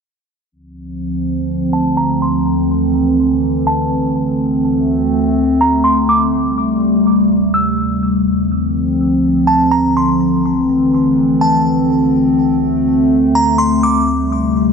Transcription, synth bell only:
1.73 1.96 A5 medium
1.97 2.20 A#5 medium
2.22 2.45 C6 medium
3.67 3.90 A5 medium
5.61 5.84 A#5 medium
5.84 6.07 C6 medium
6.09 6.32 D6 medium
7.54 7.77 E6 medium
9.47 9.70 A5 medium
9.71 9.94 A#5 medium
9.97 10.19 C6 medium
11.41 11.64 A5 medium
13.35 13.58 A#5 medium
13.58 13.81 C6 medium
13.83 14.06 D6 medium

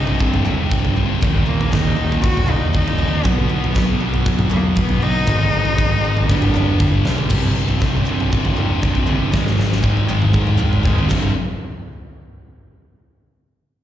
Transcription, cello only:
0.00 0.22 D#4 medium
0.21 0.71 C4 medium
1.46 1.73 A#3 medium
1.71 2.22 D#4 loud
2.22 2.52 F#4 loud
2.51 2.75 D#4 loud
2.76 3.29 D#4 loud
3.28 4.02 B3 medium
4.56 4.66 A#3 medium
4.80 5.04 B3 loud
5.03 6.31 D#4 loud
6.30 7.05 B3 medium

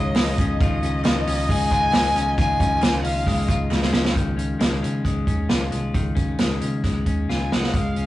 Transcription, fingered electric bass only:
0.00 0.12 C#2 loud
0.16 0.34 C#2 loud
0.39 0.56 C#2 loud
0.61 0.79 C#2 loud
0.83 1.01 C#2 loud
1.05 1.23 C#2 loud
1.27 1.45 C#2 loud
1.49 1.67 C#2 loud
1.71 1.89 C#2 loud
1.93 2.11 C#2 loud
2.15 2.33 C#2 medium
2.38 2.56 C#2 loud
2.82 3.00 C#2 loud
3.05 3.23 C#2 medium
3.27 3.45 C#2 loud
3.49 3.67 C#2 loud
3.71 3.89 C#2 medium
3.93 4.12 C#2 loud
4.15 4.52 C#2 loud
4.60 4.78 C#2 loud
4.83 5.01 C#3 medium
5.05 5.23 C#2 loud
5.27 5.46 D#2 medium
5.50 5.68 C#2 medium
5.72 5.90 C2 medium
5.94 6.31 C#2 loud
6.40 6.58 C#2 loud
6.62 6.81 C#3 medium
6.84 7.03 C#2 medium
7.06 7.25 D#2 medium
7.28 7.47 C#2 medium
7.51 7.70 C2 medium
7.74 7.92 C#2 medium
7.96 8.06 C#2 medium

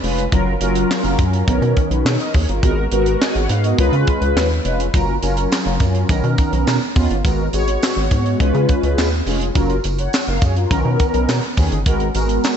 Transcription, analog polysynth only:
0.03 0.25 G#3 medium
0.03 0.25 C#4 medium
0.03 0.25 F4 medium
0.03 0.25 B4 medium
0.32 0.53 F#3 medium
0.32 0.54 C#4 medium
0.32 0.54 F4 medium
0.32 0.54 A#4 medium
0.61 1.46 F#3 loud
0.61 1.46 C#4 medium
0.61 1.46 F4 medium
0.61 1.46 A#4 medium
1.47 2.17 D#3 loud
1.47 2.17 B3 medium
1.47 2.17 C#4 medium
1.47 1.77 A#4 loud
1.91 2.05 F#4 soft
1.91 2.05 B4 medium
2.05 2.19 G#4 soft
2.05 2.19 C#5 medium
2.19 2.33 A#4 medium
2.19 2.33 D#5 medium
2.34 2.48 G#4 medium
2.34 2.48 C#5 medium
2.48 2.76 F4 medium
2.48 2.62 A#4 medium
2.63 2.84 G#3 medium
2.63 2.84 B3 medium
2.63 2.84 F#4 medium
2.63 2.85 A#4 loud
2.91 3.77 G#3 medium
2.91 3.77 B3 medium
2.91 3.77 F#4 medium
2.91 3.21 A#4 medium
3.21 3.35 D#5 soft
3.21 3.34 G#5 medium
3.35 3.49 C#5 medium
3.35 3.49 F#5 medium
3.49 3.64 B4 medium
3.49 3.63 F5 medium
3.64 3.92 A#4 medium
3.64 3.92 D#5 medium
3.78 4.47 G#3 medium
3.78 4.48 C#4 medium
3.78 4.48 F4 medium
3.78 4.48 B4 loud
4.65 4.86 G#3 medium
4.65 4.86 C#4 medium
4.65 4.86 F4 medium
4.65 4.87 B4 medium
4.93 5.15 F#3 medium
4.93 5.15 C#4 medium
4.93 5.15 F4 medium
4.93 5.15 A#4 medium
5.22 6.07 F#3 medium
5.22 6.07 C#4 medium
5.22 6.08 F4 medium
5.22 6.08 A#4 medium
6.09 6.78 D#3 medium
6.09 6.78 B3 medium
6.09 6.79 C#4 medium
6.09 6.79 A#4 loud
6.95 7.17 D#3 medium
6.95 7.17 B3 medium
6.95 7.17 C#4 medium
6.95 7.17 F4 loud
7.24 7.46 G#3 medium
7.24 7.46 B3 medium
7.24 7.46 F#4 medium
7.24 7.46 A#4 medium
7.53 8.38 G#3 medium
7.53 8.38 B3 medium
7.53 8.38 F#4 medium
7.53 8.39 C#5 loud
8.39 9.09 G#3 loud
8.39 9.09 C#4 medium
8.39 9.09 F4 medium
8.39 9.09 B4 loud
9.26 9.48 G#3 medium
9.26 9.48 C#4 medium
9.26 9.48 F4 medium
9.26 9.48 G#4 medium
9.54 9.76 F#3 medium
9.54 9.76 C#4 medium
9.54 9.77 F4 medium
9.54 9.77 A#4 medium
9.98 10.26 C#5 medium
9.98 10.26 F#5 medium
10.28 10.42 A#4 medium
10.28 10.41 F5 medium
10.42 10.56 G#4 medium
10.42 10.55 C#5 medium
10.56 10.84 F4 medium
10.56 10.70 A#4 medium
10.70 11.40 D#3 loud
10.70 11.40 B3 medium
10.70 11.40 C#4 medium
10.70 11.40 A#4 loud
11.57 11.78 D#3 medium
11.57 11.79 B3 medium
11.57 11.79 C#4 medium
11.57 11.79 G#4 medium
11.86 12.07 G#3 medium
11.86 12.07 B3 medium
11.86 12.07 F#4 medium
11.86 12.08 A#4 medium
12.15 12.57 G#3 medium
12.15 12.57 B3 medium
12.15 12.57 F#4 medium
12.15 12.57 A#4 medium

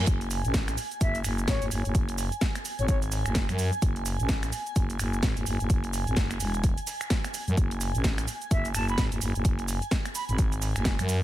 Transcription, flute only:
1.01 1.18 E5 medium
1.48 1.65 C#5 medium
2.79 2.85 C#5 medium
2.88 2.97 C#5 medium
8.51 8.68 E5 medium
8.75 8.86 A5 medium
8.89 9.03 B5 medium
10.15 10.24 B5 medium
10.29 10.35 B5 medium

